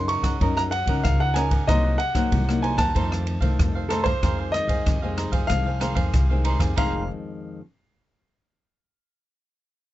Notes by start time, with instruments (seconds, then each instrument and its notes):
Already playing: upright bass F#2, nylon-string guitar C#3 C#4 D#4 A#4
0.08 cavaquinho F#4 A#4 D#5 F#5, grand piano C#6, ride
0.22 upright bass F#2, cavaquinho A#4 D#5 F#5, kick, cross-stick, ride
0.41 upright bass F#2, nylon-string guitar F#3 C#4 D#4 A#4, cavaquinho F#4 A#4 D#5 F#5, kick, ride
0.57 cavaquinho A#4 D#5 F#5, grand piano A#5, cross-stick
0.71 grand piano F#5, muted cavaquinho stroke, ride
0.86 upright bass C#2, nylon-string guitar C#4 D#4 A#4, cavaquinho A#4 D#5 F#5, kick, ride
1.03 upright bass C#2, nylon-string guitar C#3, grand piano F5, kick, cross-stick, ride
1.20 cavaquinho A#4 D#5 F#5, grand piano F#5
1.34 nylon-string guitar C#4 D#4 A#4, cavaquinho F#4 A#4 D#5 F#5, grand piano G#5, cross-stick, ride
1.51 cavaquinho A#4 D#5 F#5, kick, ride
1.67 upright bass C2, nylon-string guitar C3 F#3 A#3 D#4, cavaquinho D#4 A#4 C5 F#5, grand piano D#5, kick, cross-stick, ride
1.84 cavaquinho A#4 C5 F#5
1.98 grand piano F#5, muted cavaquinho stroke, ride
2.14 nylon-string guitar F#3 A#3 D#4, cavaquinho A#4 C5 F#5, kick, cross-stick, ride
2.32 upright bass C2, nylon-string guitar C3, kick, ride
2.48 nylon-string guitar F#3 A#3 D#4, cross-stick
2.62 cavaquinho D#4 A#4 C5 F#5, grand piano G#5, ride
2.77 upright bass D#2, cavaquinho A#4 C5 F#5, grand piano A5, kick, cross-stick, ride
2.95 upright bass F2, nylon-string guitar F2 D#3 A3 C4, cavaquinho D#4 A4 C5 F5, kick, ride
3.11 cavaquinho A4 C5 F5, cross-stick
3.26 muted cavaquinho stroke, ride
3.40 upright bass C2, nylon-string guitar D#3 A3 C4, cavaquinho A4 C5 F5, kick, ride
3.59 upright bass F2, nylon-string guitar C3, kick, cross-stick, ride
3.75 cavaquinho A4 C5 F5
3.89 nylon-string guitar D#3 A3 C4, cavaquinho D#4 A4 C5 F5, grand piano A4, cross-stick, ride
4.04 cavaquinho A4 C5 F5, grand piano C5, kick, ride
4.22 upright bass F2, nylon-string guitar F2 D#3 G#3 C4, cavaquinho D#4 G#4 C5 F5, kick, cross-stick, ride
4.39 cavaquinho G#4 C5 F5
4.52 nylon-string guitar D#3 G#3 C4, grand piano D#5, cross-stick, ride
4.68 upright bass F2, cavaquinho G#4 C5 F5, kick, ride
4.86 upright bass F2, nylon-string guitar C3, kick, cross-stick, ride
5.02 nylon-string guitar D#3 G#3 C4, cavaquinho G#4 C5 F5
5.17 cavaquinho D#4 G#4 C5 F5, cross-stick, ride
5.31 upright bass F2, cavaquinho G#4 C5 F5, kick, ride
5.47 upright bass C2, nylon-string guitar F2 D#3, grand piano F5, muted cavaquinho stroke, kick, cross-stick, ride
5.52 nylon-string guitar G#3 C4
5.66 cavaquinho G#4 C5 F5
5.80 nylon-string guitar D#3 G#3 C4, cavaquinho D#4 G#4 C5 F5, cross-stick, ride
5.95 upright bass F2, cavaquinho G#4 C5 F5, kick, ride
6.14 upright bass C2, nylon-string guitar C3, kick, cross-stick, ride
6.30 nylon-string guitar D#3 G#3 C4, cavaquinho G#4 C5 F5
6.44 cavaquinho D#4 G#4 C5 F5, ride
6.59 upright bass F2, cavaquinho G#4 C5 F5, kick, cross-stick, ride
6.76 upright bass F1, nylon-string guitar F2 D#3 G#3 C4, cavaquinho D#4 G#4 C5 F5, grand piano F5, kick, ride bell